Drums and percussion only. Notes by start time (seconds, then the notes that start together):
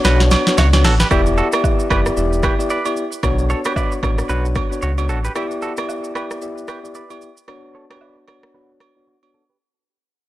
0.05 snare, shaker
0.20 snare, shaker
0.31 snare, high agogo, shaker
0.47 snare, shaker
0.58 snare, low woodblock, shaker
0.73 snare, high agogo, shaker
0.84 snare, open hi-hat, shaker
1.00 snare, shaker
1.11 kick, cross-stick, high agogo, shaker
1.26 shaker
1.37 shaker
1.52 cross-stick, high agogo, shaker
1.64 kick, low woodblock, shaker
1.79 shaker
1.90 kick, cross-stick, high agogo, shaker
2.06 cross-stick, shaker
2.17 shaker
2.33 shaker
2.43 kick, cross-stick, high agogo, shaker
2.60 shaker
2.70 shaker
2.85 high agogo, shaker
2.97 shaker
3.12 shaker
3.23 kick, cross-stick, high agogo, shaker
3.39 shaker
3.50 shaker
3.65 cross-stick, high agogo, shaker
3.76 kick, low woodblock, shaker
3.92 shaker
4.03 kick, cross-stick, high agogo, shaker
4.18 cross-stick, shaker
4.29 shaker
4.45 shaker
4.55 kick, cross-stick, high agogo, shaker
4.72 shaker
4.82 shaker
4.98 high agogo, shaker
5.09 shaker
5.25 shaker
5.36 cross-stick, high agogo, shaker
5.51 shaker
5.62 shaker
5.77 cross-stick, high agogo, shaker
5.89 low woodblock, shaker
6.04 shaker
6.15 cross-stick, high agogo, shaker
6.31 cross-stick, shaker
6.42 shaker
6.58 shaker
6.68 cross-stick, high agogo, shaker
6.85 shaker
6.95 shaker
7.10 high agogo, shaker
7.21 shaker
7.37 shaker
7.48 cross-stick, high agogo
7.91 cross-stick, high agogo
8.01 low woodblock
8.28 cross-stick, high agogo
8.43 cross-stick
8.80 cross-stick, high agogo
9.23 high agogo